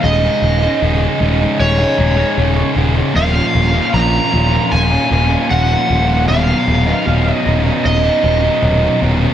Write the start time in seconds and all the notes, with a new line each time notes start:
0.03 D#1 C#3 G#3 C#4 D#4 G#4 D#5
0.23 C#4 D#4 G#4
0.42 D#1
0.62 C#4 D#4 G#4
0.81 D#1 C#3 G#3 C#4 D#4 G#4
1.20 D#1 G#3 C#4 D#4 G#4
1.40 C#4 D#4 G#4
1.59 D#1 C#5
1.78 C#4 D#4 G#4
1.98 D#1 G#3 C#4 D#4 G#4
2.17 C#4 D#4 G#4
2.36 D#1 C#3 G#3 C#4 D#4 G#4
2.75 D#1 G#3 C#4 D#4 G#4
2.94 C#4 D#4 G#4
3.14 D#1 A#2 F3 A#3 C#4 F4 F5
3.34 A#3 C#4 F4
3.54 D#1
3.73 A#3 C#4 F4
3.92 A#1 A#2 F3 A#3 C#4 F4 A#5
4.31 D#1 F3 A#3 C#4 F4
4.52 A#3 C#4 F4
4.72 D#1 G#5
4.90 A#3 C#4 F4
5.10 D#1 F3 A#3 C#4 F4
5.30 A#3 C#4 F4
5.49 D#1 A#2 F3 A#3 C#4 F4 F#5
5.88 D#1 F3 A#3 C#4 F4
6.08 A#3 C#4 F4
6.26 D#1 B2 F#3 B3 C#4 D#4 F5
6.46 B3 C#4 D#4
6.67 D#1
6.86 B3 C#4 D#4
7.05 D#1 B2 F#3 B3 C#4 D#4
7.35 D#5
7.44 D#1 F#3 B3 C#4 D#4
7.64 B3 C#4 D#4
7.85 D#1 D#5
8.03 B3 C#4 D#4
8.23 D#1 F#3 B3 C#4 D#4
8.42 B3 C#4 D#4
8.61 D#1 B2 F#3 B3 C#4 D#4
9.00 D#1 F#3 B3 C#4 D#4
9.19 B3 C#4 D#4